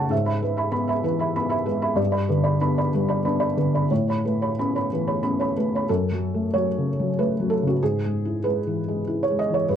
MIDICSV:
0, 0, Header, 1, 2, 480
1, 0, Start_track
1, 0, Tempo, 626959
1, 87, Time_signature, 3, 2, 24, 8
1, 2487, Tempo, 654308
1, 5367, Tempo, 630915
1, 7334, End_track
2, 0, Start_track
2, 0, Title_t, "Felt piano"
2, 0, Program_c, 0, 0
2, 0, Control_c, 0, 64, 127
2, 0, Note_on_c, 0, 42, 38
2, 0, Note_on_c, 0, 49, 36
2, 0, Note_on_c, 0, 54, 32
2, 0, Note_on_c, 0, 57, 36
2, 0, Note_on_c, 0, 61, 36
2, 0, Note_on_c, 0, 73, 36
2, 0, Note_on_c, 0, 78, 33
2, 0, Note_on_c, 0, 81, 42
2, 0, Note_on_c, 0, 85, 43
2, 75, Note_on_c, 0, 44, 49
2, 82, Note_on_c, 0, 76, 45
2, 89, Note_off_c, 0, 49, 0
2, 102, Control_c, 0, 64, 0
2, 104, Note_off_c, 0, 57, 0
2, 104, Note_off_c, 0, 61, 0
2, 105, Note_off_c, 0, 42, 0
2, 106, Note_off_c, 0, 85, 0
2, 107, Note_off_c, 0, 54, 0
2, 107, Note_off_c, 0, 78, 0
2, 109, Note_off_c, 0, 73, 0
2, 109, Note_off_c, 0, 81, 0
2, 184, Note_off_c, 0, 76, 0
2, 196, Note_on_c, 0, 76, 33
2, 202, Note_on_c, 0, 83, 38
2, 214, Control_c, 0, 64, 127
2, 309, Note_off_c, 0, 76, 0
2, 313, Note_off_c, 0, 83, 0
2, 326, Note_on_c, 0, 56, 35
2, 326, Note_on_c, 0, 71, 43
2, 436, Note_on_c, 0, 76, 37
2, 443, Note_on_c, 0, 83, 46
2, 519, Note_off_c, 0, 71, 0
2, 540, Note_off_c, 0, 83, 0
2, 545, Note_on_c, 0, 59, 37
2, 549, Note_off_c, 0, 76, 0
2, 552, Note_on_c, 0, 83, 51
2, 671, Note_off_c, 0, 83, 0
2, 671, Note_on_c, 0, 76, 42
2, 682, Note_on_c, 0, 83, 46
2, 711, Note_off_c, 0, 56, 0
2, 772, Note_off_c, 0, 59, 0
2, 787, Note_off_c, 0, 76, 0
2, 790, Note_on_c, 0, 52, 42
2, 794, Note_off_c, 0, 83, 0
2, 798, Note_on_c, 0, 71, 49
2, 912, Note_on_c, 0, 76, 39
2, 922, Note_on_c, 0, 83, 42
2, 996, Note_off_c, 0, 71, 0
2, 1028, Note_off_c, 0, 76, 0
2, 1028, Note_off_c, 0, 83, 0
2, 1039, Note_on_c, 0, 59, 45
2, 1040, Note_on_c, 0, 83, 50
2, 1137, Note_off_c, 0, 83, 0
2, 1142, Note_on_c, 0, 76, 44
2, 1148, Note_on_c, 0, 83, 49
2, 1183, Note_off_c, 0, 52, 0
2, 1258, Note_off_c, 0, 59, 0
2, 1261, Note_off_c, 0, 76, 0
2, 1265, Note_off_c, 0, 83, 0
2, 1268, Note_on_c, 0, 71, 47
2, 1273, Note_on_c, 0, 56, 44
2, 1390, Note_on_c, 0, 76, 43
2, 1394, Note_on_c, 0, 83, 48
2, 1467, Note_off_c, 0, 71, 0
2, 1488, Note_off_c, 0, 44, 0
2, 1496, Note_on_c, 0, 43, 61
2, 1504, Note_off_c, 0, 76, 0
2, 1504, Note_on_c, 0, 74, 49
2, 1506, Note_off_c, 0, 83, 0
2, 1517, Note_off_c, 0, 56, 0
2, 1538, Control_c, 0, 64, 0
2, 1610, Note_off_c, 0, 74, 0
2, 1622, Note_on_c, 0, 74, 42
2, 1623, Note_on_c, 0, 83, 45
2, 1643, Control_c, 0, 64, 127
2, 1738, Note_off_c, 0, 74, 0
2, 1739, Note_off_c, 0, 83, 0
2, 1751, Note_on_c, 0, 71, 45
2, 1756, Note_on_c, 0, 50, 41
2, 1865, Note_on_c, 0, 74, 46
2, 1873, Note_on_c, 0, 83, 47
2, 1947, Note_off_c, 0, 71, 0
2, 1980, Note_off_c, 0, 74, 0
2, 1985, Note_off_c, 0, 83, 0
2, 1997, Note_on_c, 0, 62, 44
2, 2001, Note_on_c, 0, 59, 43
2, 2001, Note_on_c, 0, 83, 54
2, 2118, Note_off_c, 0, 83, 0
2, 2127, Note_on_c, 0, 74, 41
2, 2129, Note_on_c, 0, 83, 45
2, 2143, Note_off_c, 0, 50, 0
2, 2216, Note_off_c, 0, 62, 0
2, 2219, Note_off_c, 0, 59, 0
2, 2233, Note_off_c, 0, 74, 0
2, 2235, Note_off_c, 0, 83, 0
2, 2253, Note_on_c, 0, 55, 39
2, 2253, Note_on_c, 0, 71, 45
2, 2361, Note_on_c, 0, 83, 42
2, 2370, Note_on_c, 0, 74, 41
2, 2443, Note_off_c, 0, 71, 0
2, 2473, Note_off_c, 0, 83, 0
2, 2478, Note_off_c, 0, 74, 0
2, 2487, Note_on_c, 0, 83, 43
2, 2488, Note_on_c, 0, 59, 43
2, 2489, Note_on_c, 0, 62, 47
2, 2586, Note_off_c, 0, 83, 0
2, 2597, Note_on_c, 0, 74, 42
2, 2597, Note_on_c, 0, 83, 47
2, 2634, Note_off_c, 0, 55, 0
2, 2701, Note_off_c, 0, 59, 0
2, 2702, Note_off_c, 0, 62, 0
2, 2708, Note_off_c, 0, 74, 0
2, 2708, Note_off_c, 0, 83, 0
2, 2721, Note_on_c, 0, 50, 38
2, 2725, Note_on_c, 0, 71, 43
2, 2852, Note_on_c, 0, 74, 36
2, 2857, Note_on_c, 0, 83, 40
2, 2917, Note_off_c, 0, 71, 0
2, 2922, Note_off_c, 0, 43, 0
2, 2957, Note_off_c, 0, 74, 0
2, 2960, Note_off_c, 0, 83, 0
2, 2964, Note_off_c, 0, 50, 0
2, 2970, Note_on_c, 0, 45, 50
2, 2970, Note_on_c, 0, 73, 41
2, 2979, Control_c, 0, 64, 0
2, 3089, Note_off_c, 0, 73, 0
2, 3100, Note_on_c, 0, 73, 32
2, 3102, Control_c, 0, 64, 127
2, 3110, Note_on_c, 0, 83, 38
2, 3203, Note_off_c, 0, 73, 0
2, 3208, Note_off_c, 0, 83, 0
2, 3221, Note_on_c, 0, 71, 38
2, 3227, Note_on_c, 0, 57, 35
2, 3344, Note_on_c, 0, 73, 35
2, 3348, Note_on_c, 0, 83, 40
2, 3407, Note_off_c, 0, 71, 0
2, 3445, Note_off_c, 0, 73, 0
2, 3448, Note_off_c, 0, 83, 0
2, 3465, Note_on_c, 0, 59, 33
2, 3471, Note_on_c, 0, 61, 36
2, 3472, Note_on_c, 0, 83, 40
2, 3585, Note_off_c, 0, 83, 0
2, 3591, Note_on_c, 0, 73, 33
2, 3596, Note_on_c, 0, 83, 36
2, 3604, Note_off_c, 0, 57, 0
2, 3676, Note_off_c, 0, 59, 0
2, 3679, Note_off_c, 0, 61, 0
2, 3691, Note_off_c, 0, 73, 0
2, 3693, Note_off_c, 0, 83, 0
2, 3716, Note_on_c, 0, 52, 33
2, 3720, Note_on_c, 0, 71, 39
2, 3827, Note_on_c, 0, 73, 35
2, 3827, Note_on_c, 0, 83, 35
2, 3901, Note_off_c, 0, 71, 0
2, 3929, Note_off_c, 0, 83, 0
2, 3931, Note_off_c, 0, 73, 0
2, 3940, Note_on_c, 0, 83, 42
2, 3946, Note_on_c, 0, 59, 31
2, 3946, Note_on_c, 0, 61, 38
2, 4061, Note_off_c, 0, 83, 0
2, 4063, Note_on_c, 0, 73, 35
2, 4072, Note_on_c, 0, 83, 38
2, 4095, Note_off_c, 0, 52, 0
2, 4162, Note_off_c, 0, 59, 0
2, 4162, Note_off_c, 0, 61, 0
2, 4171, Note_off_c, 0, 73, 0
2, 4176, Note_off_c, 0, 83, 0
2, 4188, Note_on_c, 0, 57, 35
2, 4192, Note_on_c, 0, 71, 34
2, 4324, Note_on_c, 0, 73, 34
2, 4331, Note_on_c, 0, 83, 37
2, 4379, Note_off_c, 0, 71, 0
2, 4393, Note_off_c, 0, 45, 0
2, 4421, Note_off_c, 0, 73, 0
2, 4424, Note_off_c, 0, 57, 0
2, 4424, Note_off_c, 0, 83, 0
2, 4426, Note_on_c, 0, 69, 65
2, 4431, Note_on_c, 0, 42, 48
2, 4434, Control_c, 0, 64, 0
2, 4558, Control_c, 0, 64, 127
2, 4593, Note_on_c, 0, 54, 30
2, 4758, Note_on_c, 0, 57, 36
2, 4837, Note_off_c, 0, 54, 0
2, 4896, Note_off_c, 0, 69, 0
2, 4899, Note_on_c, 0, 73, 60
2, 4910, Note_on_c, 0, 54, 39
2, 5000, Note_off_c, 0, 57, 0
2, 5077, Note_on_c, 0, 49, 36
2, 5156, Note_off_c, 0, 54, 0
2, 5236, Note_on_c, 0, 54, 36
2, 5317, Note_off_c, 0, 49, 0
2, 5371, Note_off_c, 0, 73, 0
2, 5378, Note_on_c, 0, 71, 60
2, 5380, Note_on_c, 0, 57, 38
2, 5477, Note_off_c, 0, 54, 0
2, 5536, Note_on_c, 0, 54, 37
2, 5614, Note_off_c, 0, 71, 0
2, 5615, Note_on_c, 0, 69, 62
2, 5631, Note_off_c, 0, 57, 0
2, 5711, Note_on_c, 0, 49, 33
2, 5732, Note_off_c, 0, 69, 0
2, 5747, Note_on_c, 0, 66, 52
2, 5788, Note_off_c, 0, 54, 0
2, 5824, Note_off_c, 0, 42, 0
2, 5858, Note_off_c, 0, 66, 0
2, 5860, Note_off_c, 0, 49, 0
2, 5862, Control_c, 0, 64, 0
2, 5864, Note_on_c, 0, 44, 43
2, 5864, Note_on_c, 0, 68, 65
2, 5975, Control_c, 0, 64, 127
2, 6030, Note_on_c, 0, 56, 36
2, 6186, Note_on_c, 0, 64, 37
2, 6275, Note_off_c, 0, 56, 0
2, 6330, Note_on_c, 0, 71, 65
2, 6336, Note_off_c, 0, 68, 0
2, 6341, Note_on_c, 0, 56, 38
2, 6433, Note_off_c, 0, 64, 0
2, 6505, Note_on_c, 0, 52, 35
2, 6590, Note_off_c, 0, 56, 0
2, 6668, Note_on_c, 0, 56, 38
2, 6752, Note_off_c, 0, 52, 0
2, 6811, Note_on_c, 0, 64, 39
2, 6913, Note_off_c, 0, 56, 0
2, 6928, Note_off_c, 0, 71, 0
2, 6930, Note_on_c, 0, 73, 59
2, 6986, Note_on_c, 0, 56, 36
2, 7048, Note_off_c, 0, 73, 0
2, 7051, Note_on_c, 0, 75, 63
2, 7065, Note_off_c, 0, 64, 0
2, 7133, Note_on_c, 0, 52, 33
2, 7166, Note_on_c, 0, 73, 58
2, 7169, Note_off_c, 0, 75, 0
2, 7232, Note_off_c, 0, 56, 0
2, 7264, Note_off_c, 0, 44, 0
2, 7279, Note_on_c, 0, 71, 60
2, 7285, Note_on_c, 0, 43, 43
2, 7287, Note_off_c, 0, 73, 0
2, 7290, Note_off_c, 0, 52, 0
2, 7299, Control_c, 0, 64, 0
2, 7334, Note_off_c, 0, 43, 0
2, 7334, Note_off_c, 0, 71, 0
2, 7334, End_track
0, 0, End_of_file